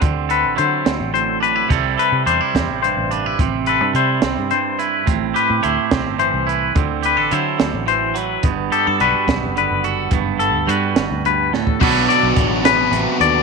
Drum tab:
CC |------------|------------|------------|------------|
HH |x-x-x-x-x-x-|x-x-x-x-x-x-|x-x-x-x-x-x-|x-x-x-x-x-x-|
SD |------o-----|------o-----|------o-----|------o-----|
BD |o-----------|o-----o-----|o-----------|o-----o-----|

CC |------------|------------|------------|x-----------|
HH |x-x-x-x-x-x-|x-x-x-x-x-x-|x-x-x-x-x---|--x-x-x-x-x-|
SD |------o-----|------o-----|------o---o-|------o-----|
BD |o-----------|o-----o-----|o----------o|o---o-------|